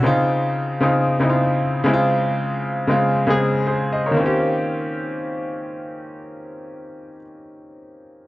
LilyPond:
\new Staff \with { instrumentName = "Grand piano" } { \time 4/4 \key des \major \tempo 4 = 116 << { r1 | r2. <aes' c''>8 <c'' ees''>16 <bes' des''>16~ | <bes' des''>16 r2. r8. | r1 | } \\ { <des c' ees' f'>4~ <des c' ees' f'>16 r16 <des c' ees' f'>8 r16 <des c' ees' fes' f'>4~ <des c' ees' fes' f'>16 <des aes c' fes' f'>8~ | <des aes c' fes' f'>4 r8 <des aes c' f'>8 r16 <des aes c' aes'>4. r16 | <ees bes c' des' f' g'>1~ | <ees bes c' des' f' g'>1 | } >> }